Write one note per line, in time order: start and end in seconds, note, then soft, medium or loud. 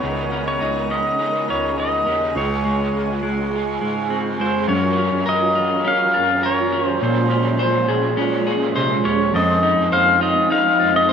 0.00 0.58 C#2 loud
0.00 1.18 C#3 medium
0.00 2.34 C#3 medium
0.00 1.18 G#3 medium
0.00 0.35 D#4 medium
0.00 4.64 G#4 medium
0.00 0.47 C#5 medium
0.00 2.31 F#5 medium
0.00 2.31 A#5 medium
0.00 2.31 D#6 medium
0.04 1.20 C#4 medium
0.04 1.21 D#4 medium
0.04 1.22 A#4 medium
0.32 0.90 C#4 medium
0.48 0.91 C#5 loud
0.61 1.18 C#2 medium
0.61 1.18 D#4 medium
0.90 1.48 C#4 medium
0.90 1.50 D#5 medium
1.18 2.08 G#3 medium
1.18 2.10 C#4 medium
1.18 1.77 D#4 medium
1.18 2.07 D#4 medium
1.23 2.03 A#4 medium
1.48 2.03 C#2 loud
1.48 2.06 C#4 medium
1.48 1.79 C#5 medium
1.78 2.42 D#4 medium
1.78 2.37 D#5 loud
2.05 2.34 D#2 medium
2.05 4.10 C#4 medium
2.05 2.36 D#4 soft
2.05 2.35 A#4 soft
2.10 2.37 C#4 soft
2.33 2.91 C#2 loud
2.33 3.51 C#3 medium
2.33 4.67 C#3 medium
2.33 3.49 G#3 medium
2.33 4.67 F5 medium
2.33 4.67 C6 medium
2.33 4.67 C#6 medium
2.37 3.54 F4 medium
2.37 4.07 C#5 medium
2.42 3.55 G#4 medium
2.65 3.22 G#3 medium
2.93 3.77 C#2 medium
3.23 3.80 G#3 medium
3.51 4.39 G#3 medium
3.51 4.41 F4 medium
3.56 4.37 G#4 medium
3.81 4.40 G#2 medium
3.81 4.38 G#3 medium
4.10 4.74 C4 medium
4.38 4.67 F2 medium
4.38 4.74 G#3 medium
4.38 4.69 F4 soft
4.38 4.68 G#4 medium
4.38 4.68 C5 medium
4.43 4.70 C4 soft
4.67 5.10 F#2 loud
4.67 5.82 F#3 medium
4.67 7.01 F#3 medium
4.67 7.00 F#3 medium
4.67 9.31 C#4 medium
4.67 5.85 C#4 medium
4.67 7.00 F4 medium
4.67 6.99 G#4 medium
4.67 7.00 A#4 loud
4.67 5.28 C#5 medium
4.73 5.87 F4 medium
4.73 5.89 A#4 medium
4.97 5.84 C#4 medium
5.13 5.26 F#2 medium
5.26 5.84 F#2 medium
5.26 6.43 A#4 medium
5.26 5.88 D#5 loud
5.55 6.13 F4 medium
5.84 6.13 F#3 medium
5.84 6.72 C#4 medium
5.84 6.14 C#4 medium
5.84 6.15 F4 medium
5.88 6.12 A#4 medium
5.88 6.46 F5 loud
6.13 6.98 F#2 medium
6.13 7.88 F4 medium
6.13 7.06 F4 medium
6.13 7.06 A#4 medium
6.18 7.04 C#4 soft
6.43 7.59 A#4 medium
6.43 6.84 C#5 loud
6.72 7.30 C#4 medium
6.84 6.99 C5 loud
6.99 8.17 A#2 medium
6.99 7.85 A#2 loud
6.99 9.34 A#2 medium
6.99 9.31 F3 medium
6.99 9.32 G#3 medium
6.99 8.16 G#3 medium
6.99 9.32 A#3 medium
7.04 8.18 C#4 medium
7.04 8.20 F4 medium
7.04 8.15 C5 medium
7.04 8.22 C5 loud
7.30 8.16 C#4 medium
7.59 8.75 C5 medium
7.88 8.16 A#2 loud
7.88 8.46 G#4 medium
8.17 8.73 A#2 loud
8.17 8.46 G#3 medium
8.17 9.03 C#4 medium
8.17 8.48 C#4 medium
8.17 8.47 F4 medium
8.22 8.45 C5 medium
8.47 9.35 C#4 medium
8.47 9.37 F4 medium
8.47 10.21 G#4 medium
8.47 9.39 C5 medium
8.52 9.34 G#3 soft
8.75 9.03 C3 loud
8.75 9.92 C5 medium
9.04 9.33 D#2 medium
9.04 9.40 C#4 medium
9.04 9.35 C#5 medium
9.32 9.76 F2 loud
9.32 10.56 F3 medium
9.32 11.13 F3 medium
9.32 10.48 G#3 medium
9.32 11.13 G#3 medium
9.32 11.13 D#4 medium
9.36 10.50 C4 loud
9.36 10.52 D#4 medium
9.36 10.53 C5 medium
9.36 9.95 D#5 loud
9.63 10.50 D#4 medium
9.78 9.91 F2 loud
9.92 10.50 F2 loud
9.92 11.08 C5 medium
9.92 10.22 F5 loud
10.21 10.79 F4 medium
10.21 10.52 D#5 loud
10.49 10.79 G#3 medium
10.49 10.80 C4 medium
10.49 11.13 D#4 medium
10.49 10.80 D#4 medium
10.49 10.96 F5 loud
10.54 10.77 C5 medium
10.79 11.13 F2 loud
10.79 11.13 D#4 medium
10.79 11.13 F4 medium
10.79 11.13 C5 medium
10.84 11.13 C4 soft
10.96 11.10 D#5 medium
11.09 11.13 C5 medium